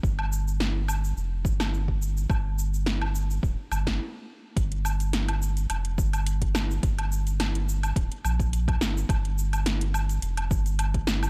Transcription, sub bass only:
X:1
M:4/4
L:1/8
Q:"Swing 16ths" 1/4=106
K:Gm
V:1 name="Sub bass" clef=bass
G,,,4 F,,, G,,,3 | G,,,4 D,,, G,,, z2 | G,,,4 F,,, G,,,3 | G,,,4 D,,, B,,,2 G,,, |
G,,,4 F,,, G,,,3 |]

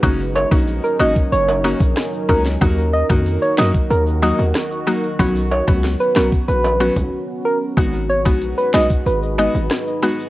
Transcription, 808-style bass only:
X:1
M:4/4
L:1/16
Q:1/4=93
K:Ebm
V:1 name="808-style bass" clef=bass
G,,,3 B,,,2 z A,,, z G,,,3 B,,, z2 D,,2 | E,,3 F,,2 z G,, z E,,3 E,, z4 | =B,,,3 ^C,,2 z B,,, z _B,,,3 =B,,, z4 | A,,,3 B,,,2 z C,, z A,,,3 A,,, z4 |]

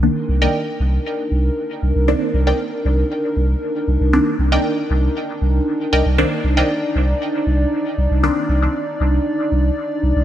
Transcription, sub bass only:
X:1
M:4/4
L:1/16
Q:1/4=117
K:Cphr
V:1 name="Sub bass" clef=bass
z2 C,, z3 C,, z3 C,, z3 C,, C,, | z2 C,, z3 C,, z3 C,, z3 C,, C,, | z2 C,, z3 C,, z3 C,, z3 C,, C,, | z2 C,, z3 C,, z3 C,, z3 C,, C,, |
z2 C,, z3 C,, z3 C,, z3 C,, C,, |]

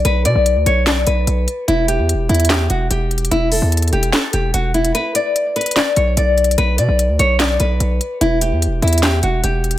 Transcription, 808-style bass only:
X:1
M:4/4
L:1/16
Q:1/4=147
K:Bm
V:1 name="808-style bass" clef=bass
B,,,2 B,, B,,,2 D,, B,,,4 B,,,2 B,,,2 z2 | E,,,3 E,,3/2 E,,,3/2 E,,4 E,,,2 E,,,4 | E,,,3 E,,3 E,,,2 z2 E,,,2 E,,,4 | z8 z2 B,,,2 B,,,4 |
B,,,2 B,, B,,,2 D,, B,,,4 B,,,2 B,,,2 z2 | E,,,3 E,,3/2 E,,,3/2 E,,4 E,,,2 E,,,4 |]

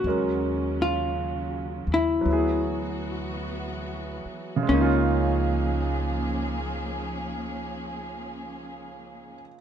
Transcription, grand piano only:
X:1
M:4/4
L:1/8
Q:"Swing" 1/4=48
K:Db
V:1 name="Grand piano"
[G,A,DB]4 [^F,=B,=EA]4 | [D,A,B,EF]8 |]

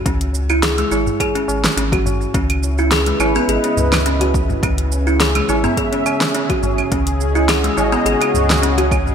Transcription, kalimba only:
X:1
M:4/4
L:1/16
Q:1/4=105
K:C#m
V:1 name="Kalimba"
C z2 E G G, E z G C3 C F3 | C z2 E G G, E B, G C3 C F3 | C z2 E G G, E B, G C3 C F3 | C z2 E G G, E B, G C3 C F3 |]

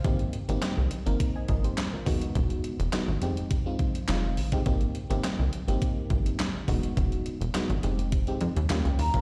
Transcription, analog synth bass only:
X:1
M:4/4
L:1/16
Q:1/4=104
K:Ab
V:1 name="Analog synth bass" clef=bass
A,,,2 z A,,, z C,, z A,,, z2 A,,,2 z2 =E,,,2 | =E,,,2 z E,,, z ^G,,, F,,,4 z2 F,,,2 =A,,,2 | A,,,2 z A,,, z C,, z A,,, z2 A,,,2 z2 =E,,,2 | =E,,,2 z E,,, z ^G,,, F,,,4 F,, _E,, E,, D,, E,, =A,,, |]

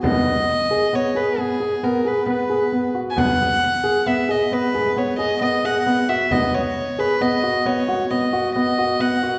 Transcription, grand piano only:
X:1
M:7/4
L:1/8
Q:1/4=134
K:G#m
V:1 name="Grand piano"
B,2 z G B, G B, G B, G B, G B, F | B,2 z G B, G B, G B, G B, G B, F | B,2 z G B, F B, F B, F B, F B, F |]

